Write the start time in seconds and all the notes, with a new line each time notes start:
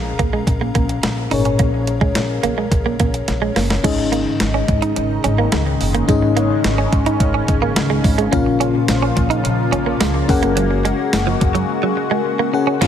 Already playing: A#1 A#2 C#4 G#4 A#4 F5 A#5
0.19 A#1 A#3, kick, closed hi-hat
0.33 G#3
0.47 A#1, muted clean electric guitar stroke, kick, closed hi-hat
0.61 A#3
0.75 A#1 A#3, kick, closed hi-hat
0.89 closed hi-hat
1.03 A#1, muted clean electric guitar stroke, snare, closed hi-hat
1.31 G#1 A#2 C#4 D#4 G#4 A#4 C#5, open hi-hat
1.45 C#4, closed hi-hat
1.59 A#1 A#3, kick, closed hi-hat
1.87 muted clean electric guitar stroke, closed hi-hat
2.01 G#3, kick
2.15 A#1, muted clean electric guitar stroke, snare, closed hi-hat
2.43 A#1 A#3, closed hi-hat
2.58 G#3
2.72 A#1, muted clean electric guitar stroke, kick, closed hi-hat
2.86 A#3
3.00 A#1 A#3, kick, closed hi-hat
3.14 closed hi-hat
3.28 A#1, muted clean electric guitar stroke, snare, closed hi-hat
3.42 G#3
3.56 F#1 A#3, snare, open hi-hat
3.70 snare
3.83 G#1 G#2 C#3 D#3 G#3 C#4 D#4 G#4 D#5, kick, closed hi-hat, crash
3.98 muted clean electric guitar stroke
4.12 A#3, closed hi-hat
4.40 G#1, snare, closed hi-hat
4.54 C#4
4.68 G#2, muted clean electric guitar stroke, kick, closed hi-hat
4.82 D#4, closed hi-hat
4.96 G#1, muted clean electric guitar stroke, closed hi-hat
5.24 G#1 C#4, closed hi-hat
5.38 A#3
5.52 C#2 G#3, snare, closed hi-hat
5.67 muted clean electric guitar stroke
5.80 F#1, open hi-hat
5.95 A#3, closed hi-hat
6.08 G#1 G#2 G#3 C#4 D#4 G#4 D#5, kick, closed hi-hat
6.22 muted clean electric guitar stroke
6.37 A#3, closed hi-hat
6.64 G#1, snare, closed hi-hat
6.78 C#4
6.92 G#2, muted clean electric guitar stroke, kick, closed hi-hat
7.06 D#4, closed hi-hat
7.20 G#1, kick, closed hi-hat
7.34 C#4
7.48 G#1, muted clean electric guitar stroke, kick, closed hi-hat
7.62 A#3
7.76 C#2, snare, closed hi-hat
7.90 G#3
8.04 G#1, muted clean electric guitar stroke, kick, open hi-hat
8.18 G#3, closed hi-hat
8.31 A#1 A#2 F3 A#3 C#4 F4 A#4 F5, kick, closed hi-hat
8.46 muted clean electric guitar stroke
8.60 C#4, closed hi-hat
8.88 A#1, snare, closed hi-hat, tambourine
9.02 C#4
9.16 A#2, muted clean electric guitar stroke, kick, closed hi-hat
9.30 D#4, closed hi-hat
9.44 A#1, muted clean electric guitar stroke, closed hi-hat
9.72 A#1 C#4, closed hi-hat
9.86 A#3
10.00 C#2 G#3, snare, closed hi-hat, tambourine
10.14 muted clean electric guitar stroke
10.28 F#1 G#3 C#4 F#4 G#4 A#4 F#5, kick, open hi-hat
10.43 A#3, closed hi-hat
10.57 F#3, closed hi-hat
10.71 muted clean electric guitar stroke
10.85 G#3, closed hi-hat
11.13 F#1, snare, closed hi-hat, tambourine
11.27 F3
11.41 F#2, muted clean electric guitar stroke, kick, closed hi-hat
11.55 F#3, closed hi-hat
11.83 F#3
11.97 muted clean electric guitar stroke
12.11 G#3
12.39 A#3
12.53 C#4 G#4 A#4 F#5, muted clean electric guitar stroke
12.67 C#4
12.81 A#1 A#2 C#3 F3 G#3 A#3 C#4 F4 G#4 A#4 F5, kick, closed hi-hat, crash